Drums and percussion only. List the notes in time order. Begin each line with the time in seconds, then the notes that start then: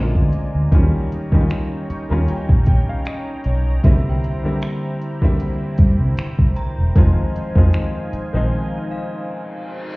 0.15 kick
0.33 closed hi-hat
0.72 kick, closed hi-hat
1.12 closed hi-hat
1.32 kick
1.50 finger snap, closed hi-hat
1.90 closed hi-hat
2.28 closed hi-hat
2.49 kick
2.66 kick, closed hi-hat
3.05 finger snap, closed hi-hat
3.44 closed hi-hat
3.84 kick, closed hi-hat
4.24 closed hi-hat
4.62 finger snap, closed hi-hat
5.02 closed hi-hat
5.22 kick
5.40 closed hi-hat
5.78 kick, closed hi-hat
6.17 finger snap, closed hi-hat
6.39 kick
6.56 closed hi-hat
6.96 kick, closed hi-hat
7.36 closed hi-hat
7.56 kick
7.73 finger snap, closed hi-hat
8.13 closed hi-hat